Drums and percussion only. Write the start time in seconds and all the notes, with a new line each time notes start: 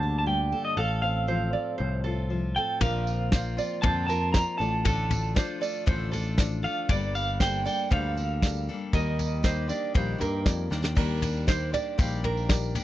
2.81 kick, floor tom, tambourine
3.07 tambourine
3.32 kick, snare, tambourine
3.58 tambourine
3.83 kick, floor tom
4.10 tambourine
4.34 kick, snare, tambourine
4.61 tambourine
4.85 kick, floor tom, tambourine
5.10 floor tom, tambourine
5.36 kick, snare, tambourine
5.63 tambourine
5.87 kick, floor tom
6.13 floor tom, tambourine
6.38 kick, snare, tambourine
6.64 tambourine
6.89 kick, floor tom, tambourine
7.15 tambourine
7.40 kick, snare, tambourine
7.66 tambourine
7.92 kick, floor tom
8.17 tambourine
8.42 kick, snare, tambourine
8.69 tambourine
8.93 kick, floor tom, tambourine
9.19 floor tom, tambourine
9.44 kick, snare, tambourine
9.69 tambourine
9.95 kick, floor tom, tambourine
10.21 floor tom, tambourine
10.46 kick, snare, tambourine
10.72 snare, tambourine
10.84 snare
10.97 kick, floor tom, crash, tambourine
11.22 floor tom, tambourine
11.36 tambourine
11.48 kick, snare, floor tom, tambourine
11.74 floor tom, tambourine
11.99 kick, floor tom, tambourine
12.24 floor tom
12.37 tambourine
12.49 kick, snare, floor tom, tambourine
12.75 floor tom, tambourine